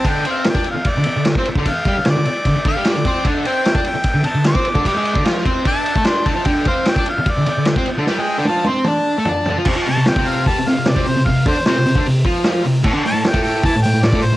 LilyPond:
<<
  \new Staff \with { instrumentName = "Harmonica" } { \time 4/4 \key c \mixolydian \tempo 4 = 150 g''8 f''8 g''8 f''8 d''4 r4 | f''4 d''4. f''8 d''4 | r8 g''4 g''4 a''8 d'''4 | d'''4 r4 a''4 c'''8 a''8 |
g''8 f''8 g''8 f''8 d''4 r4 | g''4 a''8 c'''8 a''2 | r8 a''8 g''8 f''8 a''8 f''8 d''8 c''8 | f''8 c''8 c''4 r2 |
r8 a''8 g''8 g''8 a''8 g''8 d''8 c''8 | }
  \new Staff \with { instrumentName = "Distorted electric guitar" } { \time 4/4 \key c \mixolydian <d d'>8 <c' c''>8 r16 <d' d''>16 r8. d16 r16 d8 <c' c''>16 r16 <d d'>16 | r8 <g g'>16 r16 d16 d16 r8 d16 r16 <d d'>16 <g g'>8 d16 <c' c''>8 | <d d'>8 <c' c''>8 r16 <d' d''>16 r8. d16 r16 d8 <c' c''>16 r16 <d d'>16 | <g g'>16 <gis gis'>8 <d d'>16 <f f'>8 <c' c''>8 <d' d''>8. <a a'>16 <d' d''>8 <d d'>16 <f f'>16 |
<d d'>8 <c' c''>8 r16 <d' d''>16 r8. d16 r16 d8 <c' c''>16 r16 <d d'>16 | <g g'>16 <gis gis'>8 <d d'>16 <f f'>8 <c' c''>8 <d' d''>8. <a a'>16 <d' d''>8 <d d'>16 <f f'>16 | <c c'>16 <f f'>16 c16 c16 r16 <c c'>8. <g g'>16 c16 c16 c16 c16 <c c'>16 c16 c16 | c8 <d d'>16 r16 <c c'>16 c16 c16 <d d'>16 c8 <f f'>4 c8 |
<a, a>16 <d d'>16 a,16 a,16 r16 <a, a>8. <e e'>16 a,16 a,16 a,16 a,16 <a, a>16 a,16 a,16 | }
  \new DrumStaff \with { instrumentName = "Drums" } \drummode { \time 4/4 <bd cymr>8 cymr8 <cymr sn>16 bd16 cymr8 <bd cymr>8 cymr8 <cymr sn>16 <bd sn>16 cymr16 bd16 | <bd cymr>8 <bd cymr>8 <cymr sn>8 cymr8 <bd cymr>8 <bd cymr>8 <cymr sn>16 sn16 <bd cymr>8 | <bd cymr>8 cymr8 <cymr sn>16 bd16 cymr8 <bd cymr>8 cymr8 <cymr sn>16 <bd sn>16 cymr16 bd16 | <bd cymr>8 cymr16 bd16 <cymr sn>16 sn16 <bd cymr>8 <bd cymr>8 cymr16 bd16 <cymr sn>8 <bd cymr>8 |
<bd cymr>8 <bd cymr>8 <cymr sn>16 bd16 cymr8 <bd cymr>8 cymr8 <cymr sn>16 bd16 cymr8 | sn4 tommh8 tommh8 toml4 tomfh8 tomfh8 | <cymc bd>8 hho8 <hho sn>16 bd16 hho8 <hho bd>8 <hho sn>8 <hho sn>16 bd16 hho8 | <hho bd>8 <hho bd>8 <hho sn>8 hho16 bd16 hho8 <hho bd>8 <hho sn>8 hho8 |
<cymc bd>8 hho8 <hho sn>16 bd16 hho8 <hho bd>8 hho8 <hho sn>16 bd16 hho8 | }
>>